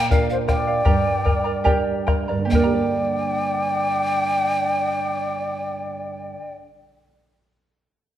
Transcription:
0.00 0.82 A#2 medium
0.00 0.11 D5 medium
0.00 0.10 F5 medium
0.00 0.11 G5 loud
0.10 0.83 D4 medium
0.10 0.84 F4 medium
0.10 0.46 A#4 medium
0.10 0.28 A#4 medium
0.10 0.84 A#4 medium
0.10 0.47 D5 medium
0.10 0.28 F5 medium
0.10 0.48 F5 medium
0.10 bombo low medium
0.30 0.37 C5 medium
0.30 0.36 F5 medium
0.47 0.67 A#4 medium
0.47 0.67 D5 medium
0.47 2.04 D5 medium
0.47 0.66 F5 medium
0.47 2.04 G5 medium
0.47 bombo rim medium
0.47 bombo low medium
0.67 0.84 D5 soft
0.67 0.84 F5 medium
0.85 2.28 G2 medium
0.85 1.24 G4 medium
0.85 1.24 A#4 medium
0.85 1.24 D5 medium
0.85 1.23 G5 medium
0.85 1.25 A#5 loud
0.85 bombo low medium
1.24 1.45 A#4 medium
1.24 1.44 D5 medium
1.24 1.45 G5 medium
1.24 1.43 A#5 medium
1.24 bombo low medium
1.44 1.64 A#4 medium
1.44 1.64 D5 medium
1.44 1.64 A#5 medium
1.64 2.47 D4 soft
1.64 2.07 G4 medium
1.64 2.49 G4 soft
1.64 2.05 A#4 medium
1.64 2.49 A#4 soft
1.64 2.06 D5 loud
1.64 2.05 G5 loud
1.64 2.07 A#5 loud
1.64 bombo low medium
2.07 2.28 A#4 medium
2.07 2.28 D5 medium
2.07 2.29 G5 medium
2.07 2.27 A#5 medium
2.07 bombo rim medium
2.07 bombo low medium
2.28 6.33 G2 medium
2.28 2.51 A#4 soft
2.28 2.51 D5 medium
2.28 2.51 A#5 medium
2.38 6.42 D3 medium
2.45 6.51 A#3 medium
2.45 6.53 G4 medium
2.50 6.54 D5 medium
2.50 2.55 D#5 medium
2.50 6.54 G5 loud
2.50 6.59 G5 medium
2.50 bombo low medium
2.55 6.60 D4 medium
2.55 6.62 A#4 loud
2.60 6.67 D5 medium
2.60 6.71 A#5 medium
2.65 2.73 G4 medium
2.74 6.78 D5 medium

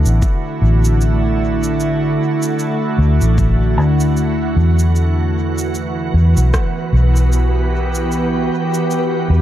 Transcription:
0.00 4.96 D3 medium
0.00 4.95 A3 medium
0.00 1.19 B3 medium
0.00 7.51 E4 medium
0.00 9.42 F#4 medium
0.05 0.20 A1 medium
0.05 shaker soft
0.22 kick loud
0.22 shaker soft
0.62 2.16 A1 medium
0.84 shaker medium
1.01 shaker soft
1.63 shaker soft
1.80 shaker soft
2.42 shaker soft
2.59 shaker soft
2.98 3.18 D2 medium
3.21 3.77 A1 medium
3.21 shaker soft
3.38 kick loud
3.38 shaker soft
3.77 4.53 D2 medium
4.00 shaker soft
4.17 shaker soft
4.57 6.11 E2 medium
4.79 shaker soft
4.96 9.42 E3 medium
4.96 9.42 B4 medium
4.96 shaker soft
5.58 shaker soft
5.75 shaker soft
6.02 9.42 B3 medium
6.14 6.34 E2 medium
6.37 6.51 B1 medium
6.37 shaker soft
6.54 kick loud
6.54 cross-stick medium
6.54 shaker soft
6.93 8.48 B1 medium
7.08 9.42 G4 medium
7.16 shaker soft
7.33 shaker soft
7.95 shaker soft
8.12 shaker soft
8.74 shaker soft
8.91 shaker soft
9.30 9.42 E2 medium

